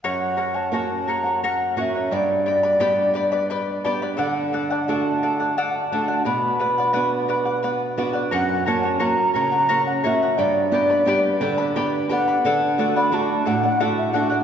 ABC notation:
X:1
M:6/8
L:1/16
Q:3/8=58
K:F#phr
V:1 name="Quena"
f3 a a2 ^a2 f2 e2 | d8 z4 | f3 a a4 f a a2 | b8 z4 |
f2 a2 ^a2 a3 f e2 | d8 z2 f2- | f3 b a2 f3 e f2 |]
V:2 name="Charango"
[^Acf]2 [Acf] [cf] [Acf]2 [Acf] [cf] [Acf]2 [Acf] [cf] | [Bdgb]2 [Bdgb] [Bdb] [GBdgb]2 [Bdgb] [Bdb] [Bdgb]2 [Bdgb] [Bdb] | [Adf]2 [Adf] [df] [Adf]2 [Adf] [df] [Adf]2 [Adf] [df] | [Bdf]2 [Bdf] [df] [Bdf]2 [Bdf] [df] [Bdf]2 [Bdf] [df] |
[^Acf]2 [Acf] [cf] [Acf]2 [Acf] [cf] [Acf]2 [Acf] [cf] | [Bdgb]2 [Bdgb] [Bdb] [GBdgb]2 [Bdgb] [Bdb] [Bdgb]2 [Bdgb] [Bdb] | [Adf]2 [Adf] [df] [Adf]2 [Adf] [df] [Adf]2 [Adf] [df] |]
V:3 name="Nylon-string guitar"
F,,4 [^A,CF]4 z2 [A,CF]2 | G,,4 [B,DG]4 z2 [B,DG]2 | D,4 [A,DF]4 z2 [A,DF]2 | B,,4 [B,DF]4 z2 [B,DF]2 |
F,,2 [^A,CF]2 [A,CF]2 C,2 [A,CF]2 [A,CF]2 | G,,2 [B,DG]2 [B,DG]2 D,2 [B,DG]2 [B,DG]2 | D,2 [A,DF]2 [A,DF]2 A,,2 [A,DF]2 [A,DF]2 |]